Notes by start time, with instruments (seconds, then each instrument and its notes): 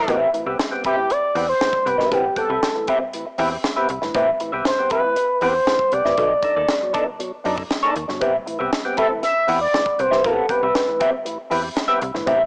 Already playing: horn section G3 B3 E4 B4
0.08 fm bass A1, tonewheel organ B3 C4 G4, clean electric guitar C4 G4 B4 E5, kick, closed hi-hat
0.33 tonewheel organ A2 E3, muted clean electric guitar stroke, closed hi-hat
0.46 fm bass C2, tonewheel organ B3 C4 G4, clean electric guitar C4 G4 B4 E5
0.59 snare, closed hi-hat
0.71 tonewheel organ B3 C4 G4, muted clean electric guitar stroke
0.84 clean electric guitar C4 G4 B4 E5, analog synth lead G4, kick, closed hi-hat
0.97 tonewheel organ A2 E3, muted clean electric guitar stroke
1.10 analog synth lead D5, muted clean electric guitar stroke, closed hi-hat
1.35 fm bass E2, tonewheel organ B3 C4 G4, clean electric guitar C4 G4 B4 F#5, open hi-hat
1.48 analog synth lead C5, muted clean electric guitar stroke
1.61 tonewheel organ A2 E3, muted clean electric guitar stroke, snare, closed hi-hat
1.73 muted clean electric guitar stroke, kick
1.86 fm bass C2, tonewheel organ B3 C4 G4, analog synth lead B4, closed hi-hat
1.98 fm bass G1, tonewheel organ C4 G4, clean electric guitar C4 G4 B4 E5, snare
2.11 fm bass A1, tonewheel organ A2 E3, clean electric guitar C4 G4 B4 F#5, analog synth lead G4, kick, closed hi-hat
2.36 tonewheel organ B3 C4 G4, analog synth lead A4, muted clean electric guitar stroke, kick, closed hi-hat
2.49 fm bass C2, tonewheel organ C4 G4, clean electric guitar C4 G4 B4 E5
2.63 tonewheel organ C4 G4, snare, closed hi-hat
2.75 tonewheel organ A2 E3, muted clean electric guitar stroke
2.87 tonewheel organ B3 C4 G4, clean electric guitar C4 G4 B4 E5, kick, closed hi-hat
3.01 muted clean electric guitar stroke
3.13 tonewheel organ A2 E3, closed hi-hat
3.27 muted clean electric guitar stroke
3.38 fm bass E2, tonewheel organ B3 C4 G4, clean electric guitar C4 G4 B4 E5, open hi-hat
3.51 tonewheel organ C4 G4, muted clean electric guitar stroke
3.64 muted clean electric guitar stroke, snare, closed hi-hat
3.76 tonewheel organ B3 C4 G4, clean electric guitar C4 G4 B4 E5
3.89 fm bass C2, closed hi-hat
4.02 fm bass G1, tonewheel organ A2 E3, muted clean electric guitar stroke, snare
4.14 fm bass A1, tonewheel organ B3 C4 G4, clean electric guitar C4 G4 B4 E5, kick, closed hi-hat
4.40 tonewheel organ A2 E3, muted clean electric guitar stroke, closed hi-hat
4.52 fm bass C2, tonewheel organ B3 C4 G4, clean electric guitar C4 G4 B4 E5
4.65 analog synth lead C5, snare, closed hi-hat
4.78 tonewheel organ B3 C4 G4, muted clean electric guitar stroke
4.90 clean electric guitar C4 G4 B4 E5, analog synth lead B4, kick, closed hi-hat
5.04 tonewheel organ A2 E3, muted clean electric guitar stroke
5.16 muted clean electric guitar stroke, closed hi-hat
5.41 fm bass E2, tonewheel organ B3 C4 G4, clean electric guitar C4 G4 B4 F#5, analog synth lead C5, open hi-hat
5.55 muted clean electric guitar stroke
5.67 tonewheel organ A2 E3, muted clean electric guitar stroke, snare, closed hi-hat
5.79 muted clean electric guitar stroke, kick
5.92 fm bass C2, tonewheel organ B3 C4 G4, analog synth lead D5, closed hi-hat
6.05 fm bass A1, tonewheel organ C4, clean electric guitar C4 G4 B4 E5, snare
6.17 fm bass B1, tonewheel organ B2 F#3, clean electric guitar B3 D#4 A4 D#5, kick, closed hi-hat
6.43 tonewheel organ D4 D#4 A4, muted clean electric guitar stroke, kick, closed hi-hat
6.56 fm bass D#2, clean electric guitar B3 D#4 A4 D5, tonewheel organ D#4 A4
6.69 tonewheel organ D#4 A4, snare, closed hi-hat
6.81 tonewheel organ B2 F#3, muted clean electric guitar stroke
6.93 clean electric guitar B3 D#4 A4 D5, tonewheel organ D4 D#4 A4, kick, closed hi-hat
7.06 muted clean electric guitar stroke
7.19 tonewheel organ B2 F#3, muted clean electric guitar stroke, closed hi-hat
7.44 fm bass F#2, clean electric guitar B3 D#4 A4 D5, tonewheel organ D4 D#4 A4, open hi-hat
7.58 tonewheel organ D#4 A4, kick
7.70 muted clean electric guitar stroke, snare, closed hi-hat
7.83 clean electric guitar B3 D#4 A4 D5, tonewheel organ D4 D#4 A4
7.96 fm bass D#2, muted clean electric guitar stroke, closed hi-hat
8.08 fm bass G1, tonewheel organ B2 F#3, muted clean electric guitar stroke, snare
8.21 fm bass A1, tonewheel organ B3 C4 G4, clean electric guitar C4 G4 B4 E5, kick, closed hi-hat
8.46 tonewheel organ A2 E3, muted clean electric guitar stroke, closed hi-hat
8.59 fm bass C2, tonewheel organ B3 C4 G4, clean electric guitar C4 G4 B4 E5
8.73 snare, closed hi-hat
8.85 tonewheel organ B3 C4 G4, muted clean electric guitar stroke
8.97 clean electric guitar C4 G4 B4 E5, analog synth lead A4, kick, closed hi-hat
9.10 tonewheel organ A2 E3, muted clean electric guitar stroke
9.23 analog synth lead E5, muted clean electric guitar stroke, snare, closed hi-hat
9.47 fm bass E2, tonewheel organ B3 C4 G4, clean electric guitar C4 G4 B4 F#5, open hi-hat
9.61 analog synth lead D5, muted clean electric guitar stroke
9.73 tonewheel organ A2 E3, muted clean electric guitar stroke, snare, closed hi-hat
9.86 muted clean electric guitar stroke, kick
9.93 analog synth lead D5
9.99 fm bass C2, tonewheel organ B3 C4 G4, analog synth lead C5, closed hi-hat
10.11 fm bass G1, tonewheel organ C4 G4, clean electric guitar C4 G4 B4 E5, snare
10.24 fm bass A1, tonewheel organ A2 E3, clean electric guitar C4 G4 B4 F#5, analog synth lead A4, kick, closed hi-hat
10.49 tonewheel organ B3 C4 G4, analog synth lead B4, muted clean electric guitar stroke, kick, closed hi-hat
10.63 fm bass C2, clean electric guitar C4 G4 B4 E5
10.75 tonewheel organ C4 G4, snare, closed hi-hat
10.88 tonewheel organ A2 E3, muted clean electric guitar stroke
11.00 tonewheel organ B3 C4 G4, clean electric guitar C4 G4 B4 E5, kick, closed hi-hat
11.12 muted clean electric guitar stroke
11.25 tonewheel organ A2 E3, muted clean electric guitar stroke, closed hi-hat
11.50 fm bass E2, tonewheel organ B3 C4 G4, clean electric guitar C4 G4 B4 E5, open hi-hat
11.63 tonewheel organ C4 G4, muted clean electric guitar stroke
11.75 muted clean electric guitar stroke, snare, closed hi-hat
11.88 tonewheel organ B3 C4 G4, clean electric guitar C4 G4 B4 E5
12.01 fm bass C2, muted clean electric guitar stroke, closed hi-hat
12.14 fm bass G1, tonewheel organ A2 E3, muted clean electric guitar stroke, snare
12.26 fm bass A1, tonewheel organ B3 C4 G4, clean electric guitar C4 G4 B4 E5, kick, closed hi-hat